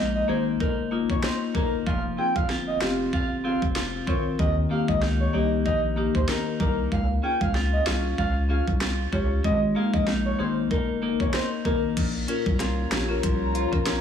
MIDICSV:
0, 0, Header, 1, 7, 480
1, 0, Start_track
1, 0, Tempo, 631579
1, 1417, Time_signature, 4, 2, 24, 8
1, 10647, End_track
2, 0, Start_track
2, 0, Title_t, "Soft synth lead"
2, 0, Program_c, 0, 80
2, 113, Note_on_c, 0, 75, 76
2, 205, Note_off_c, 0, 75, 0
2, 219, Note_on_c, 0, 72, 82
2, 337, Note_off_c, 0, 72, 0
2, 458, Note_on_c, 0, 70, 89
2, 576, Note_off_c, 0, 70, 0
2, 834, Note_on_c, 0, 73, 82
2, 926, Note_off_c, 0, 73, 0
2, 937, Note_on_c, 0, 72, 92
2, 1056, Note_off_c, 0, 72, 0
2, 1176, Note_on_c, 0, 70, 80
2, 1295, Note_off_c, 0, 70, 0
2, 1417, Note_on_c, 0, 77, 101
2, 1536, Note_off_c, 0, 77, 0
2, 1658, Note_on_c, 0, 79, 86
2, 1776, Note_off_c, 0, 79, 0
2, 1791, Note_on_c, 0, 77, 87
2, 1884, Note_off_c, 0, 77, 0
2, 2030, Note_on_c, 0, 75, 79
2, 2124, Note_off_c, 0, 75, 0
2, 2135, Note_on_c, 0, 77, 84
2, 2255, Note_off_c, 0, 77, 0
2, 2377, Note_on_c, 0, 77, 93
2, 2495, Note_off_c, 0, 77, 0
2, 2618, Note_on_c, 0, 77, 82
2, 2736, Note_off_c, 0, 77, 0
2, 3098, Note_on_c, 0, 73, 78
2, 3216, Note_off_c, 0, 73, 0
2, 3337, Note_on_c, 0, 75, 98
2, 3455, Note_off_c, 0, 75, 0
2, 3578, Note_on_c, 0, 77, 84
2, 3696, Note_off_c, 0, 77, 0
2, 3713, Note_on_c, 0, 75, 83
2, 3806, Note_off_c, 0, 75, 0
2, 3952, Note_on_c, 0, 73, 79
2, 4045, Note_off_c, 0, 73, 0
2, 4059, Note_on_c, 0, 75, 83
2, 4176, Note_off_c, 0, 75, 0
2, 4299, Note_on_c, 0, 75, 90
2, 4417, Note_off_c, 0, 75, 0
2, 4674, Note_on_c, 0, 72, 85
2, 4766, Note_off_c, 0, 72, 0
2, 4777, Note_on_c, 0, 70, 92
2, 4895, Note_off_c, 0, 70, 0
2, 5019, Note_on_c, 0, 70, 78
2, 5137, Note_off_c, 0, 70, 0
2, 5259, Note_on_c, 0, 77, 101
2, 5376, Note_off_c, 0, 77, 0
2, 5497, Note_on_c, 0, 79, 87
2, 5616, Note_off_c, 0, 79, 0
2, 5633, Note_on_c, 0, 77, 85
2, 5725, Note_off_c, 0, 77, 0
2, 5873, Note_on_c, 0, 75, 82
2, 5965, Note_off_c, 0, 75, 0
2, 5978, Note_on_c, 0, 77, 82
2, 6096, Note_off_c, 0, 77, 0
2, 6219, Note_on_c, 0, 77, 99
2, 6337, Note_off_c, 0, 77, 0
2, 6457, Note_on_c, 0, 77, 79
2, 6576, Note_off_c, 0, 77, 0
2, 6938, Note_on_c, 0, 73, 79
2, 7056, Note_off_c, 0, 73, 0
2, 7178, Note_on_c, 0, 75, 98
2, 7296, Note_off_c, 0, 75, 0
2, 7418, Note_on_c, 0, 77, 87
2, 7536, Note_off_c, 0, 77, 0
2, 7553, Note_on_c, 0, 75, 83
2, 7645, Note_off_c, 0, 75, 0
2, 7793, Note_on_c, 0, 73, 77
2, 7885, Note_off_c, 0, 73, 0
2, 7898, Note_on_c, 0, 72, 88
2, 8016, Note_off_c, 0, 72, 0
2, 8140, Note_on_c, 0, 70, 89
2, 8257, Note_off_c, 0, 70, 0
2, 8513, Note_on_c, 0, 73, 80
2, 8605, Note_off_c, 0, 73, 0
2, 8618, Note_on_c, 0, 72, 86
2, 8736, Note_off_c, 0, 72, 0
2, 8858, Note_on_c, 0, 70, 81
2, 8976, Note_off_c, 0, 70, 0
2, 10647, End_track
3, 0, Start_track
3, 0, Title_t, "Ambient pad"
3, 0, Program_c, 1, 92
3, 9096, Note_on_c, 1, 65, 81
3, 9097, Note_on_c, 1, 73, 73
3, 9097, Note_on_c, 1, 82, 88
3, 10647, Note_off_c, 1, 65, 0
3, 10647, Note_off_c, 1, 73, 0
3, 10647, Note_off_c, 1, 82, 0
3, 10647, End_track
4, 0, Start_track
4, 0, Title_t, "Marimba"
4, 0, Program_c, 2, 12
4, 213, Note_on_c, 2, 58, 74
4, 217, Note_on_c, 2, 63, 70
4, 222, Note_on_c, 2, 68, 87
4, 322, Note_off_c, 2, 58, 0
4, 325, Note_off_c, 2, 63, 0
4, 327, Note_off_c, 2, 68, 0
4, 693, Note_on_c, 2, 58, 73
4, 698, Note_on_c, 2, 63, 69
4, 702, Note_on_c, 2, 65, 83
4, 803, Note_off_c, 2, 58, 0
4, 805, Note_off_c, 2, 63, 0
4, 807, Note_off_c, 2, 65, 0
4, 1173, Note_on_c, 2, 58, 71
4, 1178, Note_on_c, 2, 63, 69
4, 1182, Note_on_c, 2, 68, 83
4, 1283, Note_off_c, 2, 58, 0
4, 1285, Note_off_c, 2, 63, 0
4, 1287, Note_off_c, 2, 68, 0
4, 1653, Note_on_c, 2, 60, 72
4, 1658, Note_on_c, 2, 65, 67
4, 1662, Note_on_c, 2, 68, 80
4, 1762, Note_off_c, 2, 60, 0
4, 1765, Note_off_c, 2, 65, 0
4, 1767, Note_off_c, 2, 68, 0
4, 2133, Note_on_c, 2, 60, 76
4, 2137, Note_on_c, 2, 65, 72
4, 2142, Note_on_c, 2, 67, 84
4, 2243, Note_off_c, 2, 60, 0
4, 2245, Note_off_c, 2, 65, 0
4, 2247, Note_off_c, 2, 67, 0
4, 2613, Note_on_c, 2, 60, 76
4, 2617, Note_on_c, 2, 65, 67
4, 2621, Note_on_c, 2, 68, 83
4, 2723, Note_off_c, 2, 60, 0
4, 2725, Note_off_c, 2, 65, 0
4, 2727, Note_off_c, 2, 68, 0
4, 3093, Note_on_c, 2, 60, 75
4, 3097, Note_on_c, 2, 65, 67
4, 3101, Note_on_c, 2, 70, 83
4, 3202, Note_off_c, 2, 60, 0
4, 3205, Note_off_c, 2, 65, 0
4, 3207, Note_off_c, 2, 70, 0
4, 3573, Note_on_c, 2, 58, 74
4, 3577, Note_on_c, 2, 63, 67
4, 3581, Note_on_c, 2, 67, 78
4, 3683, Note_off_c, 2, 58, 0
4, 3685, Note_off_c, 2, 63, 0
4, 3687, Note_off_c, 2, 67, 0
4, 4053, Note_on_c, 2, 58, 77
4, 4058, Note_on_c, 2, 63, 71
4, 4062, Note_on_c, 2, 67, 85
4, 4163, Note_off_c, 2, 58, 0
4, 4165, Note_off_c, 2, 63, 0
4, 4167, Note_off_c, 2, 67, 0
4, 4533, Note_on_c, 2, 58, 77
4, 4538, Note_on_c, 2, 63, 72
4, 4542, Note_on_c, 2, 67, 87
4, 4643, Note_off_c, 2, 58, 0
4, 4645, Note_off_c, 2, 63, 0
4, 4647, Note_off_c, 2, 67, 0
4, 5013, Note_on_c, 2, 58, 70
4, 5018, Note_on_c, 2, 63, 69
4, 5022, Note_on_c, 2, 70, 82
4, 5123, Note_off_c, 2, 58, 0
4, 5125, Note_off_c, 2, 63, 0
4, 5127, Note_off_c, 2, 70, 0
4, 5493, Note_on_c, 2, 61, 73
4, 5497, Note_on_c, 2, 65, 68
4, 5501, Note_on_c, 2, 68, 79
4, 5602, Note_off_c, 2, 61, 0
4, 5604, Note_off_c, 2, 65, 0
4, 5607, Note_off_c, 2, 68, 0
4, 5972, Note_on_c, 2, 61, 77
4, 5976, Note_on_c, 2, 65, 70
4, 5981, Note_on_c, 2, 68, 83
4, 6082, Note_off_c, 2, 61, 0
4, 6084, Note_off_c, 2, 65, 0
4, 6087, Note_off_c, 2, 68, 0
4, 6452, Note_on_c, 2, 61, 77
4, 6456, Note_on_c, 2, 65, 68
4, 6461, Note_on_c, 2, 68, 85
4, 6562, Note_off_c, 2, 61, 0
4, 6564, Note_off_c, 2, 65, 0
4, 6567, Note_off_c, 2, 68, 0
4, 6933, Note_on_c, 2, 61, 75
4, 6938, Note_on_c, 2, 65, 67
4, 6942, Note_on_c, 2, 67, 83
4, 7042, Note_off_c, 2, 61, 0
4, 7045, Note_off_c, 2, 65, 0
4, 7047, Note_off_c, 2, 67, 0
4, 7411, Note_on_c, 2, 58, 74
4, 7416, Note_on_c, 2, 63, 70
4, 7421, Note_on_c, 2, 68, 77
4, 7522, Note_off_c, 2, 58, 0
4, 7524, Note_off_c, 2, 63, 0
4, 7527, Note_off_c, 2, 68, 0
4, 7893, Note_on_c, 2, 58, 74
4, 7897, Note_on_c, 2, 63, 72
4, 7901, Note_on_c, 2, 68, 82
4, 8003, Note_off_c, 2, 58, 0
4, 8004, Note_off_c, 2, 63, 0
4, 8007, Note_off_c, 2, 68, 0
4, 8372, Note_on_c, 2, 58, 71
4, 8377, Note_on_c, 2, 63, 65
4, 8381, Note_on_c, 2, 70, 78
4, 8482, Note_off_c, 2, 58, 0
4, 8484, Note_off_c, 2, 63, 0
4, 8487, Note_off_c, 2, 70, 0
4, 8852, Note_on_c, 2, 58, 73
4, 8857, Note_on_c, 2, 63, 67
4, 8861, Note_on_c, 2, 68, 81
4, 8962, Note_off_c, 2, 58, 0
4, 8965, Note_off_c, 2, 63, 0
4, 8967, Note_off_c, 2, 68, 0
4, 9332, Note_on_c, 2, 61, 87
4, 9336, Note_on_c, 2, 65, 81
4, 9341, Note_on_c, 2, 70, 96
4, 9442, Note_off_c, 2, 61, 0
4, 9444, Note_off_c, 2, 65, 0
4, 9447, Note_off_c, 2, 70, 0
4, 9813, Note_on_c, 2, 65, 90
4, 9821, Note_on_c, 2, 67, 99
4, 9869, Note_off_c, 2, 65, 0
4, 9873, Note_off_c, 2, 67, 0
4, 9947, Note_on_c, 2, 61, 80
4, 9952, Note_on_c, 2, 65, 72
4, 9956, Note_on_c, 2, 70, 84
4, 10034, Note_off_c, 2, 61, 0
4, 10036, Note_off_c, 2, 65, 0
4, 10038, Note_off_c, 2, 70, 0
4, 10293, Note_on_c, 2, 65, 93
4, 10301, Note_on_c, 2, 72, 102
4, 10349, Note_off_c, 2, 65, 0
4, 10353, Note_off_c, 2, 72, 0
4, 10427, Note_on_c, 2, 61, 80
4, 10431, Note_on_c, 2, 65, 77
4, 10436, Note_on_c, 2, 70, 92
4, 10514, Note_off_c, 2, 61, 0
4, 10516, Note_off_c, 2, 65, 0
4, 10518, Note_off_c, 2, 70, 0
4, 10647, End_track
5, 0, Start_track
5, 0, Title_t, "Clean electric guitar"
5, 0, Program_c, 3, 27
5, 0, Note_on_c, 3, 56, 84
5, 0, Note_on_c, 3, 58, 64
5, 0, Note_on_c, 3, 63, 66
5, 209, Note_off_c, 3, 58, 0
5, 218, Note_on_c, 3, 58, 64
5, 449, Note_off_c, 3, 63, 0
5, 458, Note_on_c, 3, 63, 64
5, 689, Note_off_c, 3, 58, 0
5, 699, Note_on_c, 3, 58, 58
5, 929, Note_off_c, 3, 63, 0
5, 939, Note_on_c, 3, 63, 60
5, 1170, Note_off_c, 3, 58, 0
5, 1179, Note_on_c, 3, 58, 63
5, 1416, Note_off_c, 3, 56, 0
5, 1419, Note_on_c, 3, 53, 85
5, 1472, Note_off_c, 3, 58, 0
5, 1472, Note_off_c, 3, 63, 0
5, 1659, Note_on_c, 3, 60, 61
5, 1899, Note_on_c, 3, 65, 64
5, 2130, Note_off_c, 3, 60, 0
5, 2139, Note_on_c, 3, 60, 68
5, 2371, Note_off_c, 3, 65, 0
5, 2380, Note_on_c, 3, 65, 64
5, 2610, Note_off_c, 3, 60, 0
5, 2619, Note_on_c, 3, 60, 61
5, 2850, Note_off_c, 3, 65, 0
5, 2859, Note_on_c, 3, 65, 58
5, 3089, Note_off_c, 3, 60, 0
5, 3099, Note_on_c, 3, 60, 63
5, 3337, Note_on_c, 3, 51, 85
5, 3338, Note_off_c, 3, 53, 0
5, 3392, Note_off_c, 3, 60, 0
5, 3392, Note_off_c, 3, 65, 0
5, 3578, Note_on_c, 3, 58, 63
5, 3817, Note_on_c, 3, 63, 65
5, 4048, Note_off_c, 3, 58, 0
5, 4057, Note_on_c, 3, 58, 65
5, 4289, Note_off_c, 3, 63, 0
5, 4298, Note_on_c, 3, 63, 66
5, 4529, Note_off_c, 3, 58, 0
5, 4538, Note_on_c, 3, 58, 60
5, 4769, Note_off_c, 3, 63, 0
5, 4778, Note_on_c, 3, 63, 59
5, 5009, Note_off_c, 3, 58, 0
5, 5019, Note_on_c, 3, 58, 65
5, 5257, Note_off_c, 3, 51, 0
5, 5312, Note_off_c, 3, 58, 0
5, 5312, Note_off_c, 3, 63, 0
5, 5498, Note_on_c, 3, 61, 62
5, 5738, Note_on_c, 3, 65, 64
5, 5969, Note_off_c, 3, 61, 0
5, 5978, Note_on_c, 3, 61, 65
5, 6210, Note_off_c, 3, 65, 0
5, 6219, Note_on_c, 3, 65, 64
5, 6449, Note_off_c, 3, 61, 0
5, 6458, Note_on_c, 3, 61, 62
5, 6689, Note_off_c, 3, 65, 0
5, 6698, Note_on_c, 3, 65, 60
5, 6929, Note_off_c, 3, 61, 0
5, 6938, Note_on_c, 3, 61, 63
5, 7178, Note_on_c, 3, 56, 83
5, 7231, Note_off_c, 3, 61, 0
5, 7231, Note_off_c, 3, 65, 0
5, 7419, Note_on_c, 3, 58, 63
5, 7658, Note_on_c, 3, 63, 64
5, 7896, Note_off_c, 3, 58, 0
5, 7899, Note_on_c, 3, 58, 63
5, 8129, Note_off_c, 3, 63, 0
5, 8139, Note_on_c, 3, 63, 62
5, 8376, Note_off_c, 3, 58, 0
5, 8379, Note_on_c, 3, 58, 61
5, 8609, Note_off_c, 3, 63, 0
5, 8618, Note_on_c, 3, 63, 61
5, 8855, Note_off_c, 3, 58, 0
5, 8858, Note_on_c, 3, 58, 64
5, 9098, Note_off_c, 3, 56, 0
5, 9098, Note_on_c, 3, 46, 81
5, 9151, Note_off_c, 3, 63, 0
5, 9338, Note_on_c, 3, 61, 63
5, 9577, Note_on_c, 3, 65, 69
5, 9808, Note_off_c, 3, 61, 0
5, 9817, Note_on_c, 3, 61, 66
5, 10057, Note_on_c, 3, 53, 73
5, 10288, Note_off_c, 3, 65, 0
5, 10297, Note_on_c, 3, 65, 70
5, 10527, Note_off_c, 3, 61, 0
5, 10536, Note_on_c, 3, 61, 63
5, 10647, Note_off_c, 3, 46, 0
5, 10647, Note_off_c, 3, 53, 0
5, 10647, Note_off_c, 3, 58, 0
5, 10647, Note_off_c, 3, 61, 0
5, 10647, Note_off_c, 3, 65, 0
5, 10647, End_track
6, 0, Start_track
6, 0, Title_t, "Analog synth bass"
6, 0, Program_c, 4, 38
6, 0, Note_on_c, 4, 34, 95
6, 167, Note_off_c, 4, 34, 0
6, 217, Note_on_c, 4, 32, 91
6, 422, Note_off_c, 4, 32, 0
6, 459, Note_on_c, 4, 31, 101
6, 778, Note_off_c, 4, 31, 0
6, 833, Note_on_c, 4, 32, 98
6, 922, Note_off_c, 4, 32, 0
6, 1176, Note_on_c, 4, 31, 88
6, 1382, Note_off_c, 4, 31, 0
6, 1418, Note_on_c, 4, 29, 116
6, 1622, Note_off_c, 4, 29, 0
6, 1792, Note_on_c, 4, 31, 88
6, 2087, Note_off_c, 4, 31, 0
6, 2137, Note_on_c, 4, 29, 87
6, 2342, Note_off_c, 4, 29, 0
6, 2379, Note_on_c, 4, 31, 99
6, 2698, Note_off_c, 4, 31, 0
6, 2753, Note_on_c, 4, 29, 90
6, 3048, Note_off_c, 4, 29, 0
6, 3096, Note_on_c, 4, 32, 99
6, 3301, Note_off_c, 4, 32, 0
6, 3338, Note_on_c, 4, 39, 108
6, 3543, Note_off_c, 4, 39, 0
6, 3712, Note_on_c, 4, 37, 90
6, 4007, Note_off_c, 4, 37, 0
6, 4058, Note_on_c, 4, 36, 92
6, 4299, Note_on_c, 4, 34, 99
6, 4310, Note_off_c, 4, 36, 0
6, 4618, Note_off_c, 4, 34, 0
6, 4673, Note_on_c, 4, 39, 82
6, 4763, Note_off_c, 4, 39, 0
6, 5016, Note_on_c, 4, 36, 95
6, 5221, Note_off_c, 4, 36, 0
6, 5258, Note_on_c, 4, 37, 115
6, 5462, Note_off_c, 4, 37, 0
6, 5632, Note_on_c, 4, 37, 92
6, 5927, Note_off_c, 4, 37, 0
6, 5978, Note_on_c, 4, 36, 87
6, 6182, Note_off_c, 4, 36, 0
6, 6219, Note_on_c, 4, 37, 95
6, 6538, Note_off_c, 4, 37, 0
6, 6593, Note_on_c, 4, 36, 87
6, 6887, Note_off_c, 4, 36, 0
6, 6935, Note_on_c, 4, 37, 99
6, 7141, Note_off_c, 4, 37, 0
6, 7178, Note_on_c, 4, 32, 115
6, 7382, Note_off_c, 4, 32, 0
6, 7552, Note_on_c, 4, 34, 87
6, 7847, Note_off_c, 4, 34, 0
6, 7897, Note_on_c, 4, 32, 91
6, 8102, Note_off_c, 4, 32, 0
6, 8139, Note_on_c, 4, 31, 102
6, 8458, Note_off_c, 4, 31, 0
6, 8512, Note_on_c, 4, 32, 93
6, 8602, Note_off_c, 4, 32, 0
6, 8855, Note_on_c, 4, 32, 94
6, 9061, Note_off_c, 4, 32, 0
6, 9097, Note_on_c, 4, 34, 107
6, 9302, Note_off_c, 4, 34, 0
6, 9470, Note_on_c, 4, 36, 96
6, 9766, Note_off_c, 4, 36, 0
6, 9817, Note_on_c, 4, 34, 88
6, 10022, Note_off_c, 4, 34, 0
6, 10058, Note_on_c, 4, 36, 97
6, 10378, Note_off_c, 4, 36, 0
6, 10432, Note_on_c, 4, 34, 88
6, 10647, Note_off_c, 4, 34, 0
6, 10647, End_track
7, 0, Start_track
7, 0, Title_t, "Drums"
7, 459, Note_on_c, 9, 36, 85
7, 535, Note_off_c, 9, 36, 0
7, 833, Note_on_c, 9, 36, 81
7, 909, Note_off_c, 9, 36, 0
7, 938, Note_on_c, 9, 37, 79
7, 938, Note_on_c, 9, 38, 102
7, 1014, Note_off_c, 9, 37, 0
7, 1014, Note_off_c, 9, 38, 0
7, 1176, Note_on_c, 9, 36, 98
7, 1252, Note_off_c, 9, 36, 0
7, 1418, Note_on_c, 9, 36, 110
7, 1494, Note_off_c, 9, 36, 0
7, 1792, Note_on_c, 9, 36, 92
7, 1868, Note_off_c, 9, 36, 0
7, 1898, Note_on_c, 9, 37, 62
7, 1898, Note_on_c, 9, 38, 64
7, 1974, Note_off_c, 9, 37, 0
7, 1974, Note_off_c, 9, 38, 0
7, 2139, Note_on_c, 9, 38, 117
7, 2215, Note_off_c, 9, 38, 0
7, 2379, Note_on_c, 9, 36, 92
7, 2455, Note_off_c, 9, 36, 0
7, 2753, Note_on_c, 9, 36, 82
7, 2829, Note_off_c, 9, 36, 0
7, 2857, Note_on_c, 9, 38, 101
7, 2933, Note_off_c, 9, 38, 0
7, 3096, Note_on_c, 9, 36, 102
7, 3172, Note_off_c, 9, 36, 0
7, 3338, Note_on_c, 9, 36, 108
7, 3414, Note_off_c, 9, 36, 0
7, 3712, Note_on_c, 9, 36, 95
7, 3788, Note_off_c, 9, 36, 0
7, 3818, Note_on_c, 9, 37, 67
7, 3818, Note_on_c, 9, 38, 65
7, 3894, Note_off_c, 9, 37, 0
7, 3894, Note_off_c, 9, 38, 0
7, 4299, Note_on_c, 9, 36, 88
7, 4375, Note_off_c, 9, 36, 0
7, 4673, Note_on_c, 9, 36, 85
7, 4749, Note_off_c, 9, 36, 0
7, 4778, Note_on_c, 9, 38, 97
7, 4854, Note_off_c, 9, 38, 0
7, 5016, Note_on_c, 9, 36, 100
7, 5092, Note_off_c, 9, 36, 0
7, 5258, Note_on_c, 9, 36, 114
7, 5334, Note_off_c, 9, 36, 0
7, 5632, Note_on_c, 9, 36, 94
7, 5708, Note_off_c, 9, 36, 0
7, 5739, Note_on_c, 9, 37, 65
7, 5739, Note_on_c, 9, 38, 65
7, 5815, Note_off_c, 9, 37, 0
7, 5815, Note_off_c, 9, 38, 0
7, 5980, Note_on_c, 9, 38, 120
7, 6056, Note_off_c, 9, 38, 0
7, 6219, Note_on_c, 9, 36, 88
7, 6295, Note_off_c, 9, 36, 0
7, 6593, Note_on_c, 9, 36, 86
7, 6669, Note_off_c, 9, 36, 0
7, 6697, Note_on_c, 9, 38, 101
7, 6773, Note_off_c, 9, 38, 0
7, 6936, Note_on_c, 9, 36, 97
7, 7012, Note_off_c, 9, 36, 0
7, 7178, Note_on_c, 9, 36, 112
7, 7254, Note_off_c, 9, 36, 0
7, 7551, Note_on_c, 9, 36, 93
7, 7627, Note_off_c, 9, 36, 0
7, 7657, Note_on_c, 9, 38, 64
7, 7733, Note_off_c, 9, 38, 0
7, 8138, Note_on_c, 9, 36, 90
7, 8214, Note_off_c, 9, 36, 0
7, 8512, Note_on_c, 9, 36, 83
7, 8588, Note_off_c, 9, 36, 0
7, 8617, Note_on_c, 9, 37, 78
7, 8617, Note_on_c, 9, 38, 97
7, 8693, Note_off_c, 9, 37, 0
7, 8693, Note_off_c, 9, 38, 0
7, 8855, Note_on_c, 9, 36, 94
7, 8931, Note_off_c, 9, 36, 0
7, 9096, Note_on_c, 9, 42, 73
7, 9096, Note_on_c, 9, 49, 98
7, 9097, Note_on_c, 9, 36, 110
7, 9172, Note_off_c, 9, 42, 0
7, 9172, Note_off_c, 9, 49, 0
7, 9173, Note_off_c, 9, 36, 0
7, 9335, Note_on_c, 9, 42, 52
7, 9411, Note_off_c, 9, 42, 0
7, 9471, Note_on_c, 9, 36, 95
7, 9547, Note_off_c, 9, 36, 0
7, 9577, Note_on_c, 9, 37, 68
7, 9577, Note_on_c, 9, 38, 65
7, 9577, Note_on_c, 9, 42, 78
7, 9653, Note_off_c, 9, 37, 0
7, 9653, Note_off_c, 9, 38, 0
7, 9653, Note_off_c, 9, 42, 0
7, 9817, Note_on_c, 9, 42, 61
7, 9818, Note_on_c, 9, 38, 125
7, 9893, Note_off_c, 9, 42, 0
7, 9894, Note_off_c, 9, 38, 0
7, 10058, Note_on_c, 9, 36, 93
7, 10058, Note_on_c, 9, 42, 74
7, 10134, Note_off_c, 9, 36, 0
7, 10134, Note_off_c, 9, 42, 0
7, 10298, Note_on_c, 9, 42, 54
7, 10374, Note_off_c, 9, 42, 0
7, 10432, Note_on_c, 9, 36, 80
7, 10508, Note_off_c, 9, 36, 0
7, 10536, Note_on_c, 9, 42, 69
7, 10537, Note_on_c, 9, 38, 102
7, 10612, Note_off_c, 9, 42, 0
7, 10613, Note_off_c, 9, 38, 0
7, 10647, End_track
0, 0, End_of_file